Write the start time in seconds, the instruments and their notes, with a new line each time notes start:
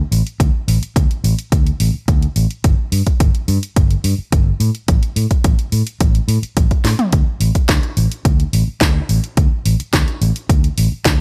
0.11 fingered electric bass A1, open hi-hat
0.27 closed hi-hat
0.40 fingered electric bass D2, kick, closed hi-hat
0.68 fingered electric bass A1, open hi-hat
0.82 muted fingered electric bass stroke, closed hi-hat
0.96 fingered electric bass D2, kick, closed hi-hat
1.11 closed hi-hat
1.24 fingered electric bass A1, open hi-hat
1.39 closed hi-hat
1.52 fingered electric bass D2, kick, closed hi-hat
1.67 closed hi-hat
1.80 fingered electric bass A1, open hi-hat
1.94 muted fingered electric bass stroke
2.08 fingered electric bass D2, kick, closed hi-hat
2.22 closed hi-hat
2.36 fingered electric bass A1, open hi-hat
2.51 closed hi-hat
2.64 fingered electric bass G1, kick, closed hi-hat
2.92 fingered electric bass G2, open hi-hat
3.07 muted fingered electric bass stroke, kick, closed hi-hat
3.20 fingered electric bass G1, kick, closed hi-hat
3.35 closed hi-hat
3.48 fingered electric bass G2, open hi-hat
3.63 closed hi-hat
3.76 fingered electric bass G1, kick, closed hi-hat
3.91 closed hi-hat
4.04 fingered electric bass G2, open hi-hat
4.18 muted fingered electric bass stroke
4.32 fingered electric bass G1, kick, closed hi-hat
4.60 fingered electric bass A2, open hi-hat
4.75 closed hi-hat
4.88 fingered electric bass A1, kick, closed hi-hat
5.03 closed hi-hat
5.16 fingered electric bass A2, open hi-hat
5.31 muted fingered electric bass stroke, kick, closed hi-hat
5.44 fingered electric bass A1, kick, closed hi-hat
5.59 closed hi-hat
5.72 fingered electric bass A2, open hi-hat
5.87 closed hi-hat
6.00 fingered electric bass A1, kick, closed hi-hat
6.15 closed hi-hat
6.28 fingered electric bass A2, open hi-hat
6.42 muted fingered electric bass stroke, closed hi-hat
6.57 fingered electric bass A1, kick, closed hi-hat
6.71 kick, closed hi-hat
6.84 fingered electric bass A2, snare, open hi-hat
6.99 closed hi-hat, mid tom
7.12 fingered electric bass D2, kick, closed hi-hat
7.40 fingered electric bass A1, open hi-hat
7.55 muted fingered electric bass stroke, kick, closed hi-hat
7.69 fingered electric bass D2, kick, snare, closed hi-hat
7.83 closed hi-hat
7.97 fingered electric bass A1, open hi-hat
8.12 closed hi-hat
8.25 fingered electric bass D2, kick, closed hi-hat
8.40 closed hi-hat
8.53 fingered electric bass A1, open hi-hat
8.68 muted fingered electric bass stroke
8.81 fingered electric bass D2, kick, snare, closed hi-hat
9.09 fingered electric bass A1, open hi-hat
9.24 closed hi-hat
9.37 fingered electric bass D2, kick, closed hi-hat
9.66 fingered electric bass A1, open hi-hat
9.80 muted fingered electric bass stroke, closed hi-hat
9.93 fingered electric bass D2, kick, snare, closed hi-hat
10.08 closed hi-hat
10.21 fingered electric bass A1, open hi-hat
10.36 closed hi-hat
10.49 fingered electric bass D2, kick, closed hi-hat
10.64 closed hi-hat
10.78 fingered electric bass A1, open hi-hat
10.92 muted fingered electric bass stroke
11.05 fingered electric bass D2, kick, snare, closed hi-hat